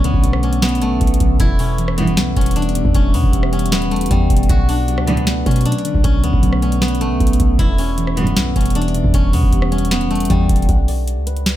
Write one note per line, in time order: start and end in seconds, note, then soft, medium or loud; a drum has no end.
0.00 1.42 B2 medium
0.00 0.04 D3 medium
0.00 0.24 F#3 loud
0.00 0.43 A3 medium
0.00 0.62 B3 loud
0.00 7.55 B3 medium
0.00 0.43 C#4 loud
0.00 1.41 D4 medium
0.00 0.74 F#4 loud
0.00 1.37 A4 medium
0.00 1.37 D5 medium
0.04 0.13 D2 loud
0.04 1.01 D3 medium
0.04 0.62 B3 medium
0.04 closed hi-hat medium
0.14 0.23 B1 loud
0.14 kick loud
0.24 0.83 B1 loud
0.24 1.00 F#3 medium
0.24 closed hi-hat medium
0.33 cross-stick loud
0.43 0.81 A3 medium
0.43 1.59 C#4 medium
0.43 closed hi-hat soft
0.53 closed hi-hat medium
0.62 1.40 B3 loud
0.62 1.97 B3 loud
0.62 snare loud
0.62 closed hi-hat soft
0.69 closed hi-hat medium
0.75 closed hi-hat medium
0.82 0.93 A1 loud
0.82 3.91 A3 medium
0.82 1.40 A3 medium
0.82 closed hi-hat medium
0.91 1.00 B1 loud
1.01 1.20 B1 loud
1.01 1.40 F#3 medium
1.01 kick loud
1.01 closed hi-hat medium
1.07 closed hi-hat medium
1.14 closed hi-hat medium
1.20 1.39 B1 loud
1.20 1.40 D3 medium
1.20 kick loud
1.20 closed hi-hat medium
1.40 2.19 E1 loud
1.40 1.48 B1 medium
1.40 2.36 E2 medium
1.40 1.48 G2 medium
1.40 1.48 E3 loud
1.40 4.01 E4 loud
1.40 4.46 G4 medium
1.40 4.46 E5 medium
1.40 kick loud
1.40 closed hi-hat medium
1.59 2.56 B2 medium
1.59 2.36 C#4 medium
1.59 open hi-hat medium
1.78 2.55 E3 medium
1.78 closed hi-hat medium
1.88 cross-stick loud
1.98 2.25 B1 loud
1.98 2.25 G2 loud
1.98 2.25 E3 loud
1.98 2.35 G3 medium
1.98 3.14 B3 medium
1.98 closed hi-hat medium
2.07 closed hi-hat soft
2.17 2.36 B1 loud
2.17 3.14 B3 loud
2.17 snare loud
2.17 closed hi-hat medium
2.36 2.83 E1 loud
2.36 3.33 G3 medium
2.36 2.62 C#4 medium
2.36 kick medium
2.36 closed hi-hat medium
2.41 closed hi-hat medium
2.46 closed hi-hat medium
2.51 closed hi-hat medium
2.56 3.32 E3 loud
2.56 3.01 D4 medium
2.56 closed hi-hat medium
2.62 closed hi-hat medium
2.69 closed hi-hat medium
2.75 3.13 B2 medium
2.75 closed hi-hat medium
2.85 2.94 E2 loud
2.85 kick medium
2.95 3.15 E1 loud
2.95 3.91 E2 medium
2.95 3.52 C#4 loud
2.95 kick loud
2.95 closed hi-hat medium
3.14 3.23 E2 loud
3.14 4.11 B2 medium
3.14 3.72 B3 medium
3.14 open hi-hat medium
3.24 3.33 E1 loud
3.24 kick medium
3.33 3.74 E1 loud
3.33 4.10 E3 medium
3.33 closed hi-hat medium
3.43 cross-stick medium
3.53 3.90 G3 medium
3.53 4.75 C#4 medium
3.53 closed hi-hat soft
3.59 closed hi-hat medium
3.66 closed hi-hat medium
3.72 3.93 D1 loud
3.72 4.50 B3 loud
3.72 5.07 B3 medium
3.72 snare loud
3.72 closed hi-hat medium
3.82 closed hi-hat soft
3.91 4.10 E1 loud
3.91 4.50 G3 medium
3.91 7.00 A3 medium
3.91 closed hi-hat soft
3.96 closed hi-hat medium
4.01 closed hi-hat medium
4.06 closed hi-hat medium
4.11 4.29 E2 loud
4.11 4.49 E3 medium
4.11 4.54 G3 medium
4.11 kick loud
4.11 closed hi-hat medium
4.30 4.49 E1 loud
4.30 4.48 B2 medium
4.30 kick loud
4.30 closed hi-hat medium
4.37 closed hi-hat medium
4.43 closed hi-hat soft
4.49 4.99 B1 loud
4.49 4.58 B1 medium
4.49 4.58 A2 medium
4.49 5.46 B2 medium
4.49 4.58 D3 medium
4.49 6.93 F#4 loud
4.49 7.56 A4 medium
4.49 7.56 D5 medium
4.49 kick loud
4.49 closed hi-hat medium
4.69 5.66 D4 medium
4.69 5.52 D4 medium
4.69 open hi-hat medium
4.88 5.64 F#3 medium
4.88 closed hi-hat medium
4.98 5.44 C#2 loud
4.98 cross-stick loud
5.07 5.35 B1 loud
5.07 5.35 A2 medium
5.07 5.35 D3 loud
5.07 5.45 A3 medium
5.07 6.23 B3 medium
5.07 closed hi-hat medium
5.17 closed hi-hat soft
5.27 6.24 B3 loud
5.27 snare loud
5.27 closed hi-hat medium
5.46 5.74 B2 loud
5.46 6.43 A3 medium
5.46 5.72 C#4 medium
5.46 kick medium
5.46 closed hi-hat medium
5.51 closed hi-hat medium
5.56 closed hi-hat medium
5.61 closed hi-hat medium
5.65 6.42 F#3 loud
5.65 6.10 D4 medium
5.65 closed hi-hat medium
5.72 closed hi-hat medium
5.78 closed hi-hat medium
5.85 6.23 D3 medium
5.85 closed hi-hat medium
5.95 6.04 B1 loud
5.95 kick medium
6.04 6.25 B1 loud
6.04 7.01 B2 medium
6.04 6.62 C#4 loud
6.04 kick loud
6.04 closed hi-hat medium
6.24 6.33 D2 loud
6.24 7.20 D3 medium
6.24 6.81 B3 medium
6.24 closed hi-hat medium
6.33 6.42 B1 loud
6.33 kick loud
6.43 7.02 B1 loud
6.43 7.19 F#3 loud
6.43 closed hi-hat medium
6.53 cross-stick medium
6.62 7.00 A3 medium
6.62 7.78 C#4 medium
6.62 closed hi-hat soft
6.72 closed hi-hat medium
6.81 7.59 B3 loud
6.81 8.17 B3 loud
6.81 snare loud
6.81 closed hi-hat soft
6.88 closed hi-hat medium
6.95 closed hi-hat medium
7.01 7.12 A1 loud
7.01 10.10 A3 medium
7.01 7.59 A3 medium
7.01 closed hi-hat medium
7.11 7.20 B1 loud
7.20 7.39 B1 loud
7.20 7.59 F#3 medium
7.20 kick loud
7.20 closed hi-hat medium
7.27 closed hi-hat medium
7.33 closed hi-hat medium
7.40 7.58 B1 loud
7.40 7.59 D3 medium
7.40 kick loud
7.40 closed hi-hat medium
7.59 8.38 E1 loud
7.59 7.67 B1 medium
7.59 8.56 E2 medium
7.59 7.67 G2 medium
7.59 7.67 E3 loud
7.59 10.66 B3 medium
7.59 10.20 E4 loud
7.59 10.66 G4 medium
7.59 10.66 E5 medium
7.59 kick loud
7.59 closed hi-hat medium
7.78 8.75 B2 medium
7.78 8.55 C#4 medium
7.78 open hi-hat medium
7.98 8.74 E3 medium
7.98 closed hi-hat medium
8.07 cross-stick medium
8.17 8.45 B1 loud
8.17 8.45 G2 loud
8.17 8.45 E3 loud
8.17 8.55 G3 medium
8.17 9.33 B3 medium
8.17 closed hi-hat medium
8.27 closed hi-hat soft
8.36 8.55 B1 loud
8.36 9.33 B3 loud
8.36 snare loud
8.36 closed hi-hat medium
8.56 9.02 E1 loud
8.56 9.53 G3 medium
8.56 8.82 C#4 medium
8.56 kick medium
8.56 closed hi-hat medium
8.61 closed hi-hat medium
8.66 closed hi-hat medium
8.70 closed hi-hat medium
8.75 9.51 E3 loud
8.75 9.20 D4 medium
8.75 closed hi-hat medium
8.82 closed hi-hat medium
8.88 closed hi-hat medium
8.95 9.32 B2 medium
8.95 closed hi-hat medium
9.04 9.13 E2 loud
9.04 kick medium
9.14 9.35 E1 loud
9.14 10.11 E2 medium
9.14 9.71 C#4 loud
9.14 kick loud
9.14 closed hi-hat medium
9.33 9.43 E2 loud
9.33 10.30 B2 medium
9.33 9.91 B3 medium
9.33 open hi-hat medium
9.43 9.52 E1 loud
9.43 kick loud
9.53 9.93 E1 loud
9.53 10.29 E3 medium
9.53 closed hi-hat medium
9.62 cross-stick loud
9.72 10.10 G3 medium
9.72 10.94 C#4 medium
9.72 closed hi-hat soft
9.78 closed hi-hat medium
9.85 closed hi-hat medium
9.91 10.12 D1 loud
9.91 10.69 B3 loud
9.91 11.56 B3 medium
9.91 snare loud
9.91 closed hi-hat medium
10.01 closed hi-hat soft
10.11 10.29 E1 loud
10.11 10.69 G3 medium
10.11 11.56 A3 medium
10.11 closed hi-hat soft
10.15 closed hi-hat medium
10.20 closed hi-hat medium
10.25 closed hi-hat medium
10.30 10.49 E2 loud
10.30 10.69 E3 medium
10.30 10.74 G3 medium
10.30 kick loud
10.30 closed hi-hat medium
10.49 10.68 E1 loud
10.49 10.69 B2 medium
10.49 kick loud
10.49 closed hi-hat medium
10.56 closed hi-hat medium
10.62 closed hi-hat soft
10.69 11.19 B1 loud
10.69 11.56 F#5 loud
10.69 kick loud
10.69 closed hi-hat medium
10.88 11.56 D5 medium
10.88 open hi-hat medium
11.08 closed hi-hat medium
11.17 11.56 C#2 loud
11.27 11.56 B4 medium
11.27 closed hi-hat medium
11.37 closed hi-hat soft
11.46 snare loud
11.46 closed hi-hat medium